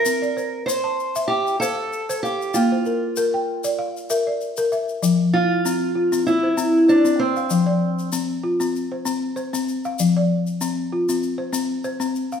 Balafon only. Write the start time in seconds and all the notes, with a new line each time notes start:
Already playing: E5
0.06 C4
0.22 D5
0.37 C5
0.67 C5
0.84 A5
1.16 E5
1.30 G5
1.61 C5 F5
2.09 C5
2.24 F5
2.56 A#3
2.72 C5
2.86 A#4
3.17 A#4
3.34 G5
3.64 D5
3.79 F5
4.10 A#4 E5
4.27 D5
4.58 A#4
4.72 E5
5.03 F3
5.65 C4
5.95 F4
6.12 C4
6.43 C5
6.57 C4
6.88 C5
7.05 C4
7.37 F5
7.51 F3
7.66 D5
8.13 C4
8.44 F4
8.60 C4
8.92 C5
9.05 C4
9.36 C5
9.53 C4
9.85 F5
10.00 F3
10.17 D5
10.61 C4
10.93 F4
11.09 C4
11.38 C5
11.53 C4
11.84 C5
12.00 C4
12.32 F5